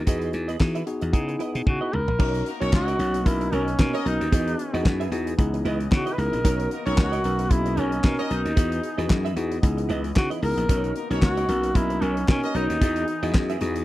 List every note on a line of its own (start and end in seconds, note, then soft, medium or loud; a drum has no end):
0.07 0.29 E2 loud
0.07 0.48 B3 medium
0.07 0.48 D#4 medium
0.07 0.48 F#4 medium
0.07 0.32 G#4 medium
0.07 0.48 G#4 loud
0.07 0.32 B4 medium
0.07 0.33 D#5 medium
0.07 kick loud
0.07 closed hi-hat medium
0.22 closed hi-hat soft
0.33 0.55 E2 loud
0.33 closed hi-hat medium
0.48 0.59 G#4 medium
0.48 0.60 B4 medium
0.48 0.60 D#5 medium
0.48 closed hi-hat medium
0.59 0.82 E3 medium
0.59 0.80 B3 medium
0.59 0.81 D#4 medium
0.59 0.81 F#4 medium
0.59 0.81 G#4 loud
0.59 muted clean electric guitar stroke soft
0.59 kick loud
0.59 snare loud
0.59 clap medium
0.75 0.85 G#4 medium
0.75 0.86 B4 medium
0.75 0.88 E5 medium
0.75 closed hi-hat medium
0.86 1.11 B3 medium
0.86 1.12 D#4 medium
0.86 1.14 F#4 medium
0.86 1.12 G#4 loud
0.86 muted clean electric guitar stroke soft
0.86 closed hi-hat medium
1.01 1.11 E2 medium
1.01 muted clean electric guitar stroke soft
1.01 closed hi-hat medium
1.13 1.35 C#3 medium
1.13 1.99 B3 medium
1.13 1.99 D#4 medium
1.13 1.99 E4 medium
1.13 1.99 G#4 loud
1.13 muted clean electric guitar stroke soft
1.13 kick loud
1.13 closed hi-hat medium
1.28 muted clean electric guitar stroke soft
1.28 closed hi-hat soft
1.39 1.58 E4 medium
1.39 1.55 B4 medium
1.39 1.53 D#5 medium
1.39 1.65 F#5 medium
1.39 closed hi-hat medium
1.54 1.65 B2 loud
1.54 muted clean electric guitar stroke soft
1.54 closed hi-hat soft
1.66 1.79 C#3 medium
1.66 1.96 F#4 medium
1.66 1.91 G#5 medium
1.66 muted clean electric guitar stroke soft
1.66 kick loud
1.66 high tom medium
1.81 1.91 E4 medium
1.81 1.92 B4 medium
1.81 1.93 D#5 medium
1.92 2.05 C#2 medium
1.92 2.47 A#4 loud
1.92 2.18 B5 medium
1.92 muted clean electric guitar stroke soft
1.92 mid tom medium
2.08 2.18 A#1 medium
2.08 muted clean electric guitar stroke soft
2.08 floor tom medium
2.19 2.41 B1 loud
2.19 4.30 A#3 medium
2.19 6.40 B3 medium
2.19 2.49 C#4 medium
2.19 2.44 D#4 medium
2.19 5.35 D#4 medium
2.19 2.49 D#4 medium
2.19 2.49 F#4 medium
2.19 2.45 A#4 medium
2.19 2.50 A#4 medium
2.19 2.45 C#5 medium
2.19 kick loud
2.19 crash loud
2.35 closed hi-hat medium
2.46 2.58 A#3 medium
2.46 2.58 D#4 medium
2.46 2.58 F#4 medium
2.46 2.58 A#4 loud
2.46 muted clean electric guitar stroke soft
2.46 closed hi-hat medium
2.60 2.73 B1 loud
2.60 2.90 C#4 medium
2.60 2.97 C#4 loud
2.60 2.90 D#4 medium
2.60 2.71 D#4 medium
2.60 2.97 F#4 medium
2.60 2.90 F#4 medium
2.60 2.97 A#4 loud
2.60 2.72 A#4 medium
2.60 2.73 C#5 medium
2.60 2.97 C#5 loud
2.60 2.90 C#5 medium
2.60 closed hi-hat medium
2.73 2.94 C#2 loud
2.73 3.28 F#4 loud
2.73 kick loud
2.73 snare loud
2.73 clap medium
2.86 2.98 D#4 medium
2.86 2.98 A#4 medium
2.86 3.00 D#5 medium
2.86 closed hi-hat medium
2.99 3.21 B1 medium
2.99 3.19 C#4 medium
2.99 3.20 D#4 medium
2.99 3.20 F#4 medium
2.99 3.20 C#5 medium
2.99 muted clean electric guitar stroke soft
2.99 closed hi-hat medium
3.14 muted clean electric guitar stroke soft
3.14 closed hi-hat medium
3.25 3.47 B1 loud
3.25 3.66 C#4 medium
3.25 3.66 D#4 medium
3.25 3.55 E4 loud
3.25 3.66 F#4 medium
3.25 3.67 A#4 medium
3.25 muted clean electric guitar stroke soft
3.25 kick loud
3.25 closed hi-hat medium
3.41 muted clean electric guitar stroke medium
3.41 closed hi-hat medium
3.52 3.74 B1 loud
3.52 4.06 C#4 loud
3.52 3.71 D#4 medium
3.52 3.67 A#4 medium
3.52 3.66 C#5 medium
3.52 closed hi-hat medium
3.67 muted clean electric guitar stroke soft
3.67 closed hi-hat soft
3.79 3.91 B2 loud
3.79 3.99 C#4 medium
3.79 3.99 D#4 medium
3.79 3.99 F#4 medium
3.79 4.00 A#4 medium
3.79 muted clean electric guitar stroke soft
3.79 kick loud
3.79 snare loud
3.79 clap medium
3.93 4.15 D#4 loud
3.93 4.05 D#4 medium
3.93 4.15 F#4 medium
3.93 4.15 A#4 loud
3.93 4.05 A#4 medium
3.93 4.06 C#5 medium
3.93 4.15 D#5 loud
3.93 closed hi-hat medium
4.05 4.18 B1 loud
4.05 4.26 C#4 medium
4.05 4.26 D#4 medium
4.05 4.82 D#4 medium
4.05 4.26 F#4 medium
4.05 4.26 A#4 medium
4.05 muted clean electric guitar stroke soft
4.05 closed hi-hat medium
4.20 4.30 D#2 medium
4.20 muted clean electric guitar stroke soft
4.20 closed hi-hat medium
4.32 4.54 E2 loud
4.32 5.37 E3 medium
4.32 4.62 B3 medium
4.32 4.62 D#4 medium
4.32 4.62 F#4 medium
4.32 5.37 G#4 medium
4.32 4.57 G#4 medium
4.32 4.62 G#4 medium
4.32 4.57 B4 medium
4.32 4.58 D#5 loud
4.32 kick loud
4.32 closed hi-hat loud
4.48 closed hi-hat medium
4.59 muted clean electric guitar stroke soft
4.59 closed hi-hat medium
4.73 4.83 E2 loud
4.73 5.02 B3 medium
4.73 5.02 D#4 medium
4.73 5.03 F#4 medium
4.73 5.03 G#4 loud
4.73 4.84 G#4 medium
4.73 4.85 B4 medium
4.73 4.86 D#5 medium
4.73 closed hi-hat medium
4.85 5.07 F#2 loud
4.85 muted clean electric guitar stroke soft
4.85 kick loud
4.85 snare loud
4.85 clap medium
5.00 5.11 G#4 medium
5.00 5.11 B4 medium
5.00 5.13 E5 medium
5.00 closed hi-hat medium
5.12 5.33 E2 loud
5.12 5.32 B3 loud
5.12 5.32 D#4 medium
5.12 5.33 F#4 medium
5.12 5.33 G#4 loud
5.12 muted clean electric guitar stroke soft
5.12 closed hi-hat medium
5.27 muted clean electric guitar stroke soft
5.27 closed hi-hat medium
5.38 5.60 C#2 loud
5.38 6.43 C#3 medium
5.38 6.43 E3 medium
5.38 5.79 B3 loud
5.38 5.79 D#4 loud
5.38 5.79 E4 medium
5.38 5.79 G#4 loud
5.38 10.65 D#5 medium
5.38 muted clean electric guitar stroke soft
5.38 kick loud
5.38 closed hi-hat medium
5.54 muted clean electric guitar stroke medium
5.54 closed hi-hat medium
5.65 5.86 C#2 medium
5.65 5.84 E4 medium
5.65 5.80 B4 medium
5.65 5.79 D#5 loud
5.65 closed hi-hat medium
5.80 muted clean electric guitar stroke soft
5.80 closed hi-hat medium
5.91 6.04 C#3 loud
5.91 6.12 B3 medium
5.91 6.12 D#4 medium
5.91 6.12 E4 medium
5.91 6.14 F#4 loud
5.91 6.12 G#4 medium
5.91 muted clean electric guitar stroke soft
5.91 kick loud
5.91 snare loud
5.91 clap medium
6.06 6.17 E4 medium
6.06 6.17 B4 medium
6.06 6.18 D#5 medium
6.06 closed hi-hat medium
6.13 6.21 B4 medium
6.18 6.30 C#2 loud
6.18 6.38 B3 medium
6.18 6.38 D#4 medium
6.18 6.39 E4 medium
6.18 6.39 G#4 medium
6.18 6.72 A#4 loud
6.18 closed hi-hat medium
6.33 6.42 A#1 medium
6.33 muted clean electric guitar stroke medium
6.33 closed hi-hat medium
6.44 6.66 B1 loud
6.44 8.55 A#3 medium
6.44 8.55 B3 medium
6.44 6.74 C#4 medium
6.44 6.69 D#4 loud
6.44 6.74 D#4 medium
6.44 6.74 F#4 medium
6.44 6.74 A#4 loud
6.44 6.70 A#4 loud
6.44 6.70 C#5 loud
6.44 kick loud
6.44 closed hi-hat loud
6.60 closed hi-hat medium
6.71 6.83 A#3 medium
6.71 6.83 D#4 medium
6.71 6.83 F#4 medium
6.71 6.83 A#4 medium
6.71 muted clean electric guitar stroke soft
6.71 closed hi-hat medium
6.86 6.98 B1 loud
6.86 7.22 C#4 loud
6.86 7.15 C#4 medium
6.86 7.15 D#4 medium
6.86 6.97 D#4 medium
6.86 7.22 F#4 loud
6.86 7.15 F#4 medium
6.86 7.22 A#4 loud
6.86 7.15 A#4 medium
6.86 6.97 A#4 medium
6.86 7.22 C#5 loud
6.86 6.98 C#5 medium
6.86 closed hi-hat medium
6.98 7.19 C#2 loud
6.98 7.53 F#4 loud
6.98 kick loud
6.98 snare loud
6.98 clap loud
7.12 7.23 D#4 medium
7.12 7.24 A#4 medium
7.12 7.25 D#5 medium
7.12 closed hi-hat medium
7.24 7.46 B1 medium
7.24 7.45 C#4 medium
7.24 7.45 D#4 medium
7.24 7.45 F#4 medium
7.24 7.45 A#4 medium
7.24 muted clean electric guitar stroke soft
7.24 closed hi-hat medium
7.39 muted clean electric guitar stroke soft
7.39 closed hi-hat medium
7.50 7.72 B1 loud
7.50 7.91 C#4 medium
7.50 7.91 D#4 medium
7.50 7.81 E4 loud
7.50 7.92 F#4 medium
7.50 7.92 G#4 medium
7.50 muted clean electric guitar stroke soft
7.50 kick loud
7.50 closed hi-hat medium
7.66 muted clean electric guitar stroke soft
7.66 closed hi-hat medium
7.77 7.99 B1 loud
7.77 8.31 C#4 medium
7.77 7.96 D#4 medium
7.77 7.92 A#4 medium
7.77 7.91 C#5 medium
7.77 closed hi-hat medium
7.92 muted clean electric guitar stroke soft
7.92 closed hi-hat medium
8.04 8.16 B2 loud
8.04 8.24 C#4 medium
8.04 8.24 D#4 medium
8.04 8.24 F#4 medium
8.04 8.25 A#4 loud
8.04 muted clean electric guitar stroke soft
8.04 kick loud
8.04 snare loud
8.04 clap medium
8.19 8.40 D#4 loud
8.19 8.29 D#4 medium
8.19 8.40 F#4 loud
8.19 8.40 A#4 loud
8.19 8.30 A#4 medium
8.19 8.31 C#5 medium
8.19 8.40 D#5 loud
8.19 closed hi-hat medium
8.30 8.43 B1 loud
8.30 8.51 C#4 medium
8.30 8.51 D#4 medium
8.30 9.07 D#4 medium
8.30 8.51 F#4 medium
8.30 8.51 A#4 medium
8.30 muted clean electric guitar stroke soft
8.30 closed hi-hat medium
8.45 8.55 D#2 medium
8.45 muted clean electric guitar stroke soft
8.45 closed hi-hat medium
8.56 8.78 E2 loud
8.56 9.62 E3 medium
8.56 8.87 B3 medium
8.56 13.85 B3 medium
8.56 8.87 D#4 medium
8.56 8.87 F#4 medium
8.56 8.81 G#4 medium
8.56 9.62 G#4 medium
8.56 8.87 G#4 medium
8.56 8.82 B4 medium
8.56 8.82 D#5 medium
8.56 kick loud
8.56 closed hi-hat loud
8.72 closed hi-hat medium
8.83 muted clean electric guitar stroke soft
8.83 closed hi-hat medium
8.98 9.08 E2 medium
8.98 9.27 B3 medium
8.98 9.27 D#4 medium
8.98 9.27 F#4 medium
8.98 9.28 G#4 loud
8.98 9.09 G#4 medium
8.98 9.09 B4 medium
8.98 9.10 D#5 medium
8.98 closed hi-hat medium
9.10 9.32 F#2 loud
9.10 muted clean electric guitar stroke soft
9.10 kick loud
9.10 snare loud
9.10 clap loud
9.25 9.35 G#4 medium
9.25 9.36 B4 medium
9.25 9.37 E5 medium
9.25 closed hi-hat medium
9.36 9.58 E2 loud
9.36 9.57 B3 medium
9.36 9.57 D#4 medium
9.36 9.57 F#4 medium
9.36 9.57 G#4 medium
9.36 muted clean electric guitar stroke soft
9.36 closed hi-hat medium
9.51 muted clean electric guitar stroke soft
9.51 closed hi-hat medium
9.62 9.85 C#2 loud
9.62 10.68 C#3 medium
9.62 10.68 E3 medium
9.62 10.03 B3 loud
9.62 10.03 D#4 medium
9.62 10.04 E4 medium
9.62 10.04 G#4 loud
9.62 muted clean electric guitar stroke soft
9.62 kick loud
9.62 closed hi-hat medium
9.78 muted clean electric guitar stroke soft
9.78 closed hi-hat medium
9.89 10.11 C#2 medium
9.89 10.08 E4 medium
9.89 10.04 B4 medium
9.89 10.03 D#5 medium
9.89 closed hi-hat medium
10.04 muted clean electric guitar stroke soft
10.04 closed hi-hat medium
10.16 10.28 C#3 loud
10.16 10.36 B3 medium
10.16 10.37 D#4 medium
10.16 10.37 E4 medium
10.16 10.29 F#4 medium
10.16 10.37 G#4 medium
10.16 muted clean electric guitar stroke soft
10.16 kick loud
10.16 snare loud
10.16 clap medium
10.30 10.41 E4 medium
10.30 10.42 B4 medium
10.30 10.42 D#5 medium
10.30 closed hi-hat medium
10.42 10.55 C#2 loud
10.42 10.63 B3 medium
10.42 10.63 D#4 medium
10.42 10.63 E4 medium
10.42 10.63 G#4 medium
10.42 10.93 A#4 loud
10.42 muted clean electric guitar stroke soft
10.42 open hi-hat medium
10.57 10.67 A#1 medium
10.57 muted clean electric guitar stroke soft
10.57 closed hi-hat medium
10.69 10.91 B1 loud
10.69 12.79 A#3 medium
10.69 10.99 C#4 medium
10.69 10.94 D#4 medium
10.69 10.99 D#4 medium
10.69 10.99 F#4 medium
10.69 10.99 A#4 medium
10.69 10.94 A#4 medium
10.69 10.95 C#5 medium
10.69 13.85 D#5 medium
10.69 kick loud
10.69 closed hi-hat loud
10.84 closed hi-hat medium
10.96 11.08 A#3 medium
10.96 11.08 D#4 medium
10.96 11.08 F#4 medium
10.96 11.08 A#4 medium
10.96 muted clean electric guitar stroke soft
10.96 closed hi-hat medium
11.10 11.22 B1 loud
11.10 11.39 C#4 medium
11.10 11.47 C#4 medium
11.10 11.40 D#4 medium
11.10 11.21 D#4 medium
11.10 11.40 F#4 medium
11.10 11.47 F#4 medium
11.10 11.47 A#4 medium
11.10 11.40 A#4 medium
11.10 11.22 A#4 medium
11.10 11.23 C#5 medium
11.10 11.47 C#5 loud
11.10 closed hi-hat medium
11.22 11.44 C#2 loud
11.22 11.77 F#4 loud
11.22 kick loud
11.22 snare loud
11.22 clap medium
11.37 11.47 D#4 medium
11.37 11.48 A#4 medium
11.37 11.50 D#5 medium
11.37 closed hi-hat medium
11.48 11.70 B1 medium
11.48 11.69 C#4 medium
11.48 11.69 D#4 medium
11.48 11.69 F#4 medium
11.48 11.70 A#4 medium
11.48 muted clean electric guitar stroke soft
11.48 closed hi-hat medium
11.63 muted clean electric guitar stroke soft
11.63 closed hi-hat medium
11.75 11.97 B1 loud
11.75 12.16 C#4 medium
11.75 12.16 D#4 medium
11.75 12.03 E4 loud
11.75 12.16 F#4 medium
11.75 12.16 A#4 medium
11.75 muted clean electric guitar stroke soft
11.75 kick loud
11.75 closed hi-hat medium
11.90 muted clean electric guitar stroke medium
11.90 closed hi-hat medium
12.02 12.23 B1 loud
12.02 12.28 C#4 medium
12.02 12.20 D#4 medium
12.02 12.17 A#4 medium
12.02 12.16 C#5 medium
12.02 closed hi-hat medium
12.17 muted clean electric guitar stroke soft
12.17 closed hi-hat soft
12.28 12.40 B2 loud
12.28 12.49 C#4 medium
12.28 12.58 C#4 loud
12.28 12.49 D#4 medium
12.28 12.49 F#4 medium
12.28 12.49 A#4 medium
12.28 muted clean electric guitar stroke soft
12.28 kick loud
12.28 snare loud
12.28 clap medium
12.43 12.64 D#4 loud
12.43 12.64 F#4 loud
12.43 12.64 A#4 loud
12.43 12.64 D#5 loud
12.43 muted clean electric guitar stroke medium
12.43 closed hi-hat medium
12.55 12.67 B1 medium
12.55 12.75 C#4 medium
12.55 12.75 D#4 medium
12.55 12.74 D#4 medium
12.55 13.35 D#4 loud
12.55 12.76 F#4 medium
12.55 12.71 A#4 medium
12.55 12.76 C#5 medium
12.55 12.69 C#5 medium
12.55 closed hi-hat medium
12.69 12.79 D#2 medium
12.69 muted clean electric guitar stroke medium
12.69 closed hi-hat medium
12.81 13.03 E2 loud
12.81 13.85 E3 medium
12.81 13.11 B3 medium
12.81 13.11 D#4 medium
12.81 13.06 E4 medium
12.81 13.11 F#4 medium
12.81 13.85 G#4 medium
12.81 13.11 G#4 medium
12.81 13.07 G#4 medium
12.81 13.07 D#5 loud
12.81 kick loud
12.81 closed hi-hat loud
12.96 closed hi-hat medium
13.08 muted clean electric guitar stroke soft
13.08 closed hi-hat medium
13.23 13.32 E2 loud
13.23 13.52 B3 medium
13.23 13.52 D#4 medium
13.23 13.33 E4 medium
13.23 13.52 F#4 medium
13.23 13.52 G#4 medium
13.23 13.34 G#4 medium
13.23 13.35 D#5 medium
13.23 closed hi-hat medium
13.34 13.56 F#2 loud
13.34 muted clean electric guitar stroke soft
13.34 kick loud
13.34 snare loud
13.34 clap medium
13.50 13.60 E4 medium
13.50 13.61 G#4 medium
13.50 13.62 E5 medium
13.50 closed hi-hat medium
13.61 13.83 E2 loud
13.61 13.81 B3 medium
13.61 13.82 D#4 medium
13.61 13.82 F#4 medium
13.61 13.82 G#4 loud
13.61 muted clean electric guitar stroke soft
13.61 closed hi-hat medium
13.76 muted clean electric guitar stroke soft
13.76 closed hi-hat medium